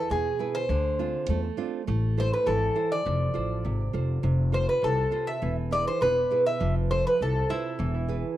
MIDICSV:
0, 0, Header, 1, 4, 480
1, 0, Start_track
1, 0, Tempo, 591133
1, 568, Time_signature, 2, 2, 24, 8
1, 6797, End_track
2, 0, Start_track
2, 0, Title_t, "Bouzouki"
2, 0, Program_c, 0, 25
2, 0, Note_on_c, 0, 69, 75
2, 87, Note_off_c, 0, 69, 0
2, 91, Note_on_c, 0, 68, 79
2, 445, Note_on_c, 0, 72, 85
2, 460, Note_off_c, 0, 68, 0
2, 1133, Note_off_c, 0, 72, 0
2, 1785, Note_on_c, 0, 72, 86
2, 1888, Note_off_c, 0, 72, 0
2, 1896, Note_on_c, 0, 71, 74
2, 2003, Note_on_c, 0, 69, 82
2, 2014, Note_off_c, 0, 71, 0
2, 2369, Note_on_c, 0, 74, 85
2, 2375, Note_off_c, 0, 69, 0
2, 3055, Note_off_c, 0, 74, 0
2, 3688, Note_on_c, 0, 72, 81
2, 3805, Note_off_c, 0, 72, 0
2, 3808, Note_on_c, 0, 71, 75
2, 3930, Note_on_c, 0, 69, 83
2, 3931, Note_off_c, 0, 71, 0
2, 4281, Note_on_c, 0, 76, 85
2, 4300, Note_off_c, 0, 69, 0
2, 4507, Note_off_c, 0, 76, 0
2, 4649, Note_on_c, 0, 74, 94
2, 4767, Note_off_c, 0, 74, 0
2, 4771, Note_on_c, 0, 72, 80
2, 4881, Note_off_c, 0, 72, 0
2, 4887, Note_on_c, 0, 71, 83
2, 5223, Note_off_c, 0, 71, 0
2, 5249, Note_on_c, 0, 76, 86
2, 5472, Note_off_c, 0, 76, 0
2, 5609, Note_on_c, 0, 72, 84
2, 5721, Note_off_c, 0, 72, 0
2, 5740, Note_on_c, 0, 71, 82
2, 5846, Note_off_c, 0, 71, 0
2, 5866, Note_on_c, 0, 69, 76
2, 6082, Note_off_c, 0, 69, 0
2, 6091, Note_on_c, 0, 64, 73
2, 6797, Note_off_c, 0, 64, 0
2, 6797, End_track
3, 0, Start_track
3, 0, Title_t, "Nylon-string guitar"
3, 0, Program_c, 1, 24
3, 0, Note_on_c, 1, 64, 47
3, 0, Note_on_c, 1, 68, 41
3, 0, Note_on_c, 1, 71, 49
3, 79, Note_on_c, 1, 47, 56
3, 225, Note_off_c, 1, 64, 0
3, 230, Note_off_c, 1, 68, 0
3, 232, Note_off_c, 1, 71, 0
3, 319, Note_on_c, 1, 64, 47
3, 324, Note_on_c, 1, 68, 46
3, 328, Note_on_c, 1, 71, 51
3, 515, Note_off_c, 1, 64, 0
3, 516, Note_off_c, 1, 68, 0
3, 519, Note_off_c, 1, 71, 0
3, 549, Note_off_c, 1, 47, 0
3, 567, Note_on_c, 1, 50, 61
3, 805, Note_on_c, 1, 62, 41
3, 806, Note_on_c, 1, 60, 49
3, 809, Note_on_c, 1, 65, 54
3, 1032, Note_off_c, 1, 50, 0
3, 1052, Note_on_c, 1, 57, 64
3, 1189, Note_off_c, 1, 62, 0
3, 1190, Note_off_c, 1, 60, 0
3, 1192, Note_off_c, 1, 65, 0
3, 1276, Note_on_c, 1, 60, 51
3, 1281, Note_on_c, 1, 62, 45
3, 1282, Note_on_c, 1, 65, 55
3, 1473, Note_off_c, 1, 60, 0
3, 1475, Note_off_c, 1, 62, 0
3, 1476, Note_off_c, 1, 65, 0
3, 1512, Note_off_c, 1, 57, 0
3, 1522, Note_on_c, 1, 57, 64
3, 1764, Note_on_c, 1, 64, 46
3, 1768, Note_on_c, 1, 69, 44
3, 1772, Note_on_c, 1, 72, 57
3, 1989, Note_off_c, 1, 57, 0
3, 1999, Note_on_c, 1, 52, 59
3, 2149, Note_off_c, 1, 64, 0
3, 2151, Note_off_c, 1, 69, 0
3, 2154, Note_off_c, 1, 72, 0
3, 2236, Note_on_c, 1, 64, 47
3, 2239, Note_on_c, 1, 69, 43
3, 2241, Note_on_c, 1, 72, 57
3, 2432, Note_off_c, 1, 64, 0
3, 2432, Note_off_c, 1, 69, 0
3, 2435, Note_off_c, 1, 72, 0
3, 2468, Note_off_c, 1, 52, 0
3, 2480, Note_on_c, 1, 53, 60
3, 2710, Note_on_c, 1, 65, 46
3, 2718, Note_on_c, 1, 69, 43
3, 2720, Note_on_c, 1, 72, 53
3, 2948, Note_off_c, 1, 53, 0
3, 2961, Note_on_c, 1, 48, 57
3, 3101, Note_off_c, 1, 65, 0
3, 3105, Note_off_c, 1, 72, 0
3, 3106, Note_off_c, 1, 69, 0
3, 3194, Note_on_c, 1, 65, 44
3, 3198, Note_on_c, 1, 69, 42
3, 3202, Note_on_c, 1, 72, 52
3, 3426, Note_off_c, 1, 48, 0
3, 3435, Note_on_c, 1, 48, 61
3, 3583, Note_off_c, 1, 65, 0
3, 3586, Note_off_c, 1, 69, 0
3, 3587, Note_off_c, 1, 72, 0
3, 3672, Note_on_c, 1, 65, 46
3, 3679, Note_on_c, 1, 69, 42
3, 3681, Note_on_c, 1, 72, 50
3, 3901, Note_off_c, 1, 48, 0
3, 3911, Note_on_c, 1, 48, 55
3, 4063, Note_off_c, 1, 65, 0
3, 4064, Note_off_c, 1, 69, 0
3, 4067, Note_off_c, 1, 72, 0
3, 4151, Note_on_c, 1, 65, 48
3, 4155, Note_on_c, 1, 69, 46
3, 4158, Note_on_c, 1, 72, 56
3, 4350, Note_off_c, 1, 65, 0
3, 4352, Note_off_c, 1, 69, 0
3, 4354, Note_off_c, 1, 72, 0
3, 4385, Note_off_c, 1, 48, 0
3, 4399, Note_on_c, 1, 52, 65
3, 4637, Note_on_c, 1, 64, 47
3, 4643, Note_on_c, 1, 68, 41
3, 4646, Note_on_c, 1, 71, 48
3, 4869, Note_off_c, 1, 52, 0
3, 4879, Note_on_c, 1, 47, 64
3, 5026, Note_off_c, 1, 64, 0
3, 5029, Note_off_c, 1, 68, 0
3, 5031, Note_off_c, 1, 71, 0
3, 5120, Note_on_c, 1, 64, 48
3, 5127, Note_on_c, 1, 68, 45
3, 5128, Note_on_c, 1, 71, 55
3, 5316, Note_off_c, 1, 64, 0
3, 5319, Note_off_c, 1, 71, 0
3, 5320, Note_off_c, 1, 68, 0
3, 5350, Note_off_c, 1, 47, 0
3, 5360, Note_on_c, 1, 53, 65
3, 5609, Note_on_c, 1, 65, 45
3, 5611, Note_on_c, 1, 69, 45
3, 5619, Note_on_c, 1, 72, 54
3, 5831, Note_off_c, 1, 53, 0
3, 5860, Note_on_c, 1, 48, 64
3, 5994, Note_off_c, 1, 65, 0
3, 5996, Note_off_c, 1, 69, 0
3, 5998, Note_off_c, 1, 72, 0
3, 6084, Note_on_c, 1, 65, 45
3, 6089, Note_on_c, 1, 69, 44
3, 6089, Note_on_c, 1, 72, 54
3, 6279, Note_off_c, 1, 65, 0
3, 6281, Note_off_c, 1, 69, 0
3, 6281, Note_off_c, 1, 72, 0
3, 6321, Note_off_c, 1, 48, 0
3, 6324, Note_on_c, 1, 52, 63
3, 6564, Note_on_c, 1, 64, 45
3, 6566, Note_on_c, 1, 68, 44
3, 6571, Note_on_c, 1, 71, 53
3, 6793, Note_off_c, 1, 52, 0
3, 6797, Note_off_c, 1, 64, 0
3, 6797, Note_off_c, 1, 68, 0
3, 6797, Note_off_c, 1, 71, 0
3, 6797, End_track
4, 0, Start_track
4, 0, Title_t, "Upright bass"
4, 0, Program_c, 2, 32
4, 87, Note_on_c, 2, 40, 72
4, 255, Note_off_c, 2, 40, 0
4, 560, Note_on_c, 2, 38, 92
4, 898, Note_off_c, 2, 38, 0
4, 1041, Note_on_c, 2, 40, 78
4, 1211, Note_off_c, 2, 40, 0
4, 1527, Note_on_c, 2, 33, 93
4, 1863, Note_off_c, 2, 33, 0
4, 2007, Note_on_c, 2, 32, 78
4, 2175, Note_off_c, 2, 32, 0
4, 2487, Note_on_c, 2, 29, 92
4, 2655, Note_off_c, 2, 29, 0
4, 2725, Note_on_c, 2, 33, 74
4, 2941, Note_off_c, 2, 33, 0
4, 2967, Note_on_c, 2, 32, 73
4, 3183, Note_off_c, 2, 32, 0
4, 3199, Note_on_c, 2, 29, 72
4, 3418, Note_off_c, 2, 29, 0
4, 3438, Note_on_c, 2, 29, 90
4, 3777, Note_off_c, 2, 29, 0
4, 3923, Note_on_c, 2, 36, 77
4, 4092, Note_off_c, 2, 36, 0
4, 4404, Note_on_c, 2, 28, 85
4, 4742, Note_off_c, 2, 28, 0
4, 4888, Note_on_c, 2, 28, 75
4, 5056, Note_off_c, 2, 28, 0
4, 5366, Note_on_c, 2, 29, 88
4, 5703, Note_off_c, 2, 29, 0
4, 5853, Note_on_c, 2, 36, 73
4, 6020, Note_off_c, 2, 36, 0
4, 6331, Note_on_c, 2, 28, 86
4, 6667, Note_off_c, 2, 28, 0
4, 6797, End_track
0, 0, End_of_file